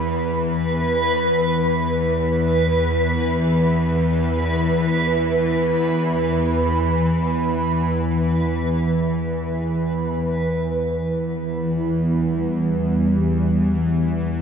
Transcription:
0.00 10.61 E2 medium
0.00 10.61 E3 medium
0.00 10.64 B4 medium
10.62 14.42 E2 medium
10.62 14.42 E3 medium
10.66 14.42 E3 medium
11.43 14.42 B3 medium
11.99 14.42 G3 medium

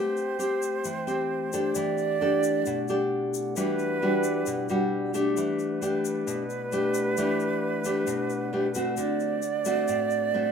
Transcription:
0.00 0.82 A3 medium
0.00 3.52 A3 medium
0.00 0.36 C4 medium
0.00 1.74 C4 medium
0.00 0.36 G4 medium
0.00 1.74 C5 medium
0.00 1.76 C5 loud
0.00 1.74 G5 medium
0.17 shaker soft
0.39 0.84 C4 medium
0.39 0.84 G4 medium
0.39 shaker medium
0.62 shaker medium
0.84 1.73 E3 medium
0.84 shaker medium
1.07 1.49 C4 medium
1.07 1.49 G4 medium
1.07 shaker soft
1.53 2.17 D4 medium
1.53 2.17 G4 medium
1.53 2.17 A4 medium
1.53 shaker medium
1.75 2.64 E3 medium
1.75 3.53 E4 medium
1.75 3.54 G4 medium
1.75 3.29 D5 loud
1.75 5.33 D5 medium
1.75 5.34 F#5 medium
1.75 shaker medium
1.98 shaker soft
2.21 2.85 D4 medium
2.21 2.85 G4 medium
2.21 2.85 A4 medium
2.43 shaker medium
2.66 3.54 B2 medium
2.66 shaker medium
2.88 3.53 D4 medium
2.88 3.53 G4 medium
2.88 3.53 A4 medium
2.88 shaker soft
3.34 shaker medium
3.54 4.44 E3 medium
3.54 5.34 G3 medium
3.54 3.98 G3 medium
3.54 3.98 D4 medium
3.54 5.34 E4 medium
3.54 3.98 F#4 medium
3.54 5.10 B4 loud
3.54 shaker medium
3.79 shaker soft
4.02 4.66 G3 medium
4.02 4.66 D4 medium
4.02 4.66 F#4 medium
4.23 shaker medium
4.46 5.35 B2 medium
4.46 shaker medium
4.69 5.11 G3 medium
4.69 5.11 D4 medium
4.69 5.11 F#4 medium
4.69 shaker soft
5.14 5.78 A3 medium
5.14 5.78 D4 medium
5.14 5.78 G4 medium
5.14 shaker medium
5.36 6.25 E3 medium
5.36 10.52 A3 medium
5.36 8.94 E4 medium
5.36 8.94 G4 medium
5.36 8.94 B4 loud
5.36 8.94 D5 medium
5.36 8.94 F#5 medium
5.36 shaker medium
5.59 shaker soft
5.81 6.42 A3 medium
5.81 6.43 D4 medium
5.81 6.43 G4 medium
5.81 shaker medium
6.05 shaker medium
6.27 7.15 B2 medium
6.27 shaker medium
6.50 shaker soft
6.72 7.14 A3 medium
6.72 7.14 D4 soft
6.72 7.14 G4 medium
6.72 shaker medium
6.94 shaker medium
7.17 8.06 E3 medium
7.17 7.82 A3 medium
7.17 7.82 D4 medium
7.17 7.82 G4 medium
7.17 shaker medium
7.40 shaker soft
7.84 8.49 A3 medium
7.84 8.49 D4 medium
7.84 8.50 G4 medium
7.84 shaker medium
8.07 8.95 B2 medium
8.07 shaker medium
8.30 shaker soft
8.53 8.66 A3 medium
8.53 8.66 D4 medium
8.53 8.66 G4 medium
8.74 9.39 A3 medium
8.74 9.39 C4 medium
8.74 9.40 F#4 medium
8.74 shaker medium
8.97 9.86 D3 medium
8.97 10.52 D4 medium
8.97 10.52 C5 medium
8.97 10.52 D5 loud
8.97 10.52 F#5 medium
8.97 shaker medium
9.20 shaker soft
9.42 shaker medium
9.65 10.30 A3 medium
9.65 10.30 C4 medium
9.65 10.30 F#4 medium
9.65 shaker medium
9.88 10.52 A2 medium
9.88 shaker medium
10.10 shaker soft
10.34 10.52 A3 medium
10.34 10.52 C4 medium
10.34 10.52 F#4 medium

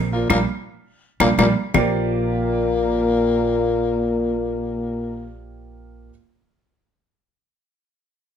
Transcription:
0.00 0.27 A#1 medium
0.12 0.29 A#2 medium
0.12 0.27 F3 medium
0.12 0.29 A#3 medium
0.12 0.28 F4 medium
0.30 0.44 A#1 medium
0.30 0.39 A#2 medium
0.30 0.41 G3 medium
0.30 0.39 A#3 medium
0.30 0.42 A#3 medium
0.30 0.42 D4 medium
0.30 high bongo loud
0.30 claves loud
1.20 1.34 A#1 medium
1.20 1.29 A#2 medium
1.20 1.32 G3 medium
1.20 1.32 A#3 medium
1.20 1.29 A#3 medium
1.20 1.32 D4 medium
1.20 high bongo loud
1.20 claves medium
1.38 1.52 A#1 medium
1.38 1.48 A#2 medium
1.38 1.50 G3 medium
1.38 1.47 A#3 medium
1.38 1.50 A#3 medium
1.38 1.50 D4 medium
1.38 high bongo medium
1.38 claves loud
1.74 6.09 A#1 medium
1.74 5.41 A#2 medium
1.74 5.40 A#3 medium
1.74 6.09 A#3 medium
1.74 6.09 F4 medium
1.74 6.09 G4 medium
1.74 6.10 A#4 medium
1.74 6.10 C5 medium
1.74 6.10 D5 medium
1.74 low bongo medium
1.74 claves medium

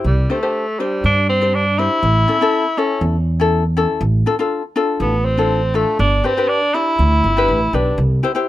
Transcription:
0.04 0.25 C2 medium
0.04 0.32 G3 medium
0.30 0.81 A3 medium
0.30 0.37 D4 medium
0.30 0.38 G4 medium
0.30 0.38 C5 medium
0.43 0.65 D4 medium
0.43 0.65 G4 medium
0.43 0.65 C5 medium
0.80 1.04 G3 medium
0.80 1.17 D4 medium
0.80 1.17 G4 medium
0.80 1.17 C5 medium
1.04 1.86 G2 medium
1.04 1.28 D4 medium
1.29 1.56 C4 medium
1.41 1.64 D4 medium
1.41 1.64 G4 soft
1.41 1.64 C5 medium
1.54 1.80 D4 medium
1.78 2.03 D4 medium
1.78 2.80 E4 loud
1.78 2.03 G4 medium
1.78 2.04 C5 medium
2.03 2.24 A1 medium
2.28 2.36 C#4 medium
2.28 2.36 E4 medium
2.28 2.36 A4 medium
2.41 2.63 C#4 medium
2.41 2.63 E4 medium
2.41 2.64 A4 medium
2.77 3.15 C#4 medium
2.77 3.03 C#4 medium
2.77 3.15 E4 medium
2.77 3.16 A4 medium
3.01 3.84 E2 medium
3.40 3.62 C#4 medium
3.40 3.63 E4 medium
3.40 3.63 A4 medium
3.77 4.02 C#4 medium
3.77 4.02 E4 medium
3.77 4.02 A4 medium
4.01 4.22 A1 medium
4.26 4.34 D4 medium
4.26 4.34 F4 medium
4.26 4.34 A4 medium
4.39 4.61 D4 medium
4.39 4.62 F4 medium
4.39 4.62 A4 medium
4.76 5.13 D4 medium
4.76 5.14 F4 medium
4.76 5.14 A4 medium
5.00 5.83 A1 medium
5.00 5.27 B3 medium
5.25 5.77 C4 loud
5.37 5.60 D4 medium
5.37 5.61 F4 medium
5.37 5.61 A4 medium
5.74 5.99 A3 medium
5.74 5.99 D4 medium
5.74 6.00 F4 medium
5.74 6.00 A4 medium
5.99 6.20 G1 medium
5.99 6.27 D4 medium
6.24 6.50 C4 medium
6.24 6.32 D4 medium
6.24 6.32 G4 medium
6.24 6.32 B4 medium
6.37 6.60 D4 medium
6.37 6.60 G4 medium
6.37 6.60 B4 medium
6.48 6.76 D4 medium
6.74 7.12 D4 medium
6.74 7.76 E4 loud
6.74 7.12 G4 medium
6.74 7.12 D5 medium
6.99 7.20 D2 medium
7.24 7.46 G1 medium
7.37 7.59 D4 medium
7.37 7.59 G4 medium
7.37 7.60 B4 medium
7.48 7.71 A1 medium
7.73 7.95 B1 medium
7.73 7.98 D4 medium
7.73 7.99 D4 medium
7.73 7.98 G4 medium
7.73 7.99 B4 medium
7.98 8.18 C2 medium
8.23 8.31 E4 medium
8.23 8.31 G4 medium
8.23 8.31 C5 medium
8.35 8.48 E4 medium
8.35 8.48 G4 medium
8.35 8.48 C5 medium

